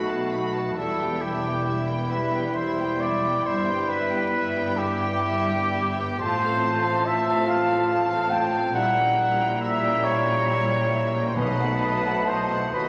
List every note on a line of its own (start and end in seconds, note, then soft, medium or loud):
0.00 0.78 B1 medium
0.00 0.78 B2 soft
0.00 0.74 A3 soft
0.00 0.74 D#4 soft
0.00 0.76 F#4 medium
0.00 0.77 F#4 medium
0.00 0.75 B5 soft
0.08 0.33 B3 soft
0.08 0.33 F#4 soft
0.08 0.32 A5 soft
0.30 0.55 A3 soft
0.30 0.55 D#4 soft
0.30 0.54 B5 soft
0.53 0.77 B3 soft
0.53 0.78 F#4 soft
0.53 0.77 A5 soft
0.76 3.41 E1 medium
0.76 3.41 E2 soft
0.76 6.03 G3 soft
0.76 0.98 G3 soft
0.76 5.87 G3 soft
0.76 0.98 E4 soft
0.76 6.03 E4 medium
0.76 5.88 E4 medium
0.76 1.24 A4 medium
0.76 1.23 A4 medium
0.76 0.98 E5 soft
0.76 5.87 B5 soft
0.98 1.21 B3 soft
0.98 1.22 G4 soft
0.98 1.22 G5 soft
1.20 1.44 G3 soft
1.20 1.44 E4 soft
1.20 1.83 G4 soft
1.20 1.84 G4 medium
1.20 1.43 E5 soft
1.42 1.66 B3 soft
1.42 1.67 G4 soft
1.42 1.66 G5 soft
1.65 1.87 G3 soft
1.65 1.88 E4 soft
1.65 1.86 E5 soft
1.86 2.11 B3 soft
1.86 2.10 G5 soft
1.90 2.12 G4 soft
2.09 2.34 G3 soft
2.09 2.34 E4 soft
2.09 2.56 B4 medium
2.09 2.58 B4 medium
2.09 2.33 E5 soft
2.32 2.56 B3 soft
2.32 2.57 G4 soft
2.32 2.56 G5 soft
2.55 2.77 G3 medium
2.55 2.78 E4 soft
2.55 3.02 C5 medium
2.55 3.03 C5 medium
2.55 2.77 E5 soft
2.78 3.01 B3 soft
2.78 3.02 G4 soft
2.78 3.01 G5 soft
3.01 3.23 G3 soft
3.01 3.24 E4 soft
3.01 3.45 D5 medium
3.01 3.48 D5 medium
3.01 3.23 E5 soft
3.24 3.46 B3 soft
3.24 3.47 G4 soft
3.24 3.46 G5 soft
3.45 6.16 G1 medium
3.45 6.16 G2 medium
3.45 3.65 G3 medium
3.45 3.67 E4 medium
3.45 3.90 C5 medium
3.45 3.91 C5 medium
3.45 3.66 E5 soft
3.66 3.88 B3 soft
3.66 3.89 G5 soft
3.71 3.91 G4 soft
3.88 4.11 G3 soft
3.88 4.79 B4 medium
3.88 4.81 B4 medium
3.88 4.11 E5 soft
3.93 4.13 E4 medium
4.10 4.33 B3 soft
4.10 4.33 G5 soft
4.14 4.35 G4 soft
4.33 4.54 G3 soft
4.33 4.56 E4 medium
4.33 4.54 E5 soft
4.55 4.79 B3 medium
4.55 4.80 G4 soft
4.55 4.78 G5 soft
4.77 5.01 G3 medium
4.77 5.03 E4 medium
4.77 6.19 G4 medium
4.77 6.20 G4 medium
4.77 5.01 E5 soft
5.01 5.25 B3 medium
5.01 5.26 G4 soft
5.01 5.25 G5 soft
5.23 5.48 G3 medium
5.23 5.48 E4 soft
5.23 5.46 E5 medium
5.48 5.74 B3 soft
5.48 5.74 G4 soft
5.48 5.73 G5 soft
5.73 5.98 G3 soft
5.73 5.98 E4 soft
5.73 5.97 E5 soft
5.98 6.20 B3 soft
5.98 6.21 G4 soft
5.98 6.21 G5 soft
6.19 8.70 A1 medium
6.19 8.70 A2 medium
6.19 8.70 F3 medium
6.19 6.41 A3 medium
6.19 8.70 F4 medium
6.19 8.76 F4 medium
6.19 6.42 F4 medium
6.19 7.07 C5 medium
6.19 7.08 C5 medium
6.19 8.69 A5 medium
6.19 6.41 A5 medium
6.42 6.64 C4 medium
6.42 6.65 A4 medium
6.42 6.64 F5 medium
6.64 6.85 A3 soft
6.64 6.85 F4 medium
6.64 6.85 A5 soft
6.84 7.06 C4 medium
6.84 7.06 A4 soft
6.84 7.05 F5 soft
7.05 7.26 A3 medium
7.05 7.24 F4 soft
7.05 7.48 E5 medium
7.05 7.25 A5 medium
7.25 7.48 C4 medium
7.25 7.46 A4 soft
7.25 7.47 F5 soft
7.46 7.68 A3 medium
7.46 7.67 F4 medium
7.46 8.32 F5 medium
7.46 7.68 A5 medium
7.65 7.89 C4 soft
7.65 7.87 A4 soft
7.65 7.88 F5 soft
7.87 8.08 A3 medium
7.87 8.07 F4 soft
7.87 8.08 A5 medium
8.08 8.31 C4 medium
8.08 8.30 A4 medium
8.08 8.31 F5 medium
8.29 8.52 A3 medium
8.29 8.51 F4 medium
8.29 8.73 G5 medium
8.29 8.74 G5 medium
8.29 8.53 A5 medium
8.51 8.74 C4 soft
8.51 8.74 A4 soft
8.51 8.74 F5 soft
8.73 11.32 A#1 medium
8.73 11.32 A#2 medium
8.73 8.94 G3 medium
8.73 11.32 G3 medium
8.73 8.94 E4 medium
8.73 11.35 E4 medium
8.73 11.32 E4 medium
8.73 8.95 E5 medium
8.73 9.44 F#5 medium
8.73 9.59 F#5 medium
8.73 11.32 A#5 medium
8.95 9.17 A#3 medium
8.95 9.17 C#4 medium
8.95 9.18 G5 soft
9.16 9.38 G3 medium
9.16 9.39 E4 medium
9.16 9.39 E5 medium
9.37 9.61 A#3 medium
9.37 9.60 C#4 soft
9.37 9.61 G5 medium
9.61 9.81 G3 soft
9.61 9.81 E4 medium
9.61 10.05 E5 medium
9.61 9.81 E5 soft
9.61 10.06 E5 medium
9.82 10.04 A#3 medium
9.82 10.04 C#4 medium
9.82 10.05 G5 medium
10.04 10.26 G3 medium
10.04 10.26 E4 medium
10.04 11.30 C#5 medium
10.04 11.09 C#5 medium
10.04 10.27 E5 medium
10.24 10.48 A#3 medium
10.24 10.47 C#4 medium
10.28 10.49 G5 medium
10.48 10.68 G3 medium
10.48 10.68 E4 medium
10.48 10.69 E5 medium
10.68 10.92 A#3 medium
10.68 10.91 C#4 soft
10.68 10.92 G5 soft
10.91 11.14 G3 medium
10.91 11.14 E4 medium
10.91 11.15 E5 soft
11.13 11.36 A#3 medium
11.13 11.36 C#4 soft
11.13 11.37 G5 soft
11.29 11.37 C5 medium
11.35 12.71 B1 medium
11.35 12.70 B2 medium
11.35 12.71 B2 medium
11.35 12.57 F#3 medium
11.35 12.70 A3 medium
11.35 11.57 B3 medium
11.35 11.56 D#4 medium
11.35 12.75 D#4 medium
11.35 12.00 D#4 medium
11.35 12.29 B4 medium
11.35 12.30 B4 medium
11.35 11.58 D#5 medium
11.35 12.70 A5 medium
11.58 11.81 A3 medium
11.58 11.81 C4 soft
11.58 11.81 F#5 medium
11.79 12.03 B3 medium
11.79 12.03 D#4 medium
11.79 12.04 D#5 soft
12.02 12.27 A3 soft
12.02 12.26 C4 soft
12.02 12.74 E4 medium
12.02 12.27 F#5 soft
12.25 12.48 B3 soft
12.25 12.48 D#4 medium
12.25 12.75 C5 medium
12.25 12.48 D#5 soft
12.29 12.76 C5 medium
12.48 12.74 A3 soft
12.48 12.73 C4 soft
12.48 12.74 F#5 soft
12.73 12.89 D#2 medium
12.73 12.89 F#3 soft
12.73 12.89 F#3 medium
12.73 12.89 A3 medium
12.73 12.89 B3 soft
12.73 12.89 F#4 soft
12.73 12.89 F#4 medium
12.73 12.89 B4 medium
12.73 12.89 D#5 medium
12.73 12.89 A5 soft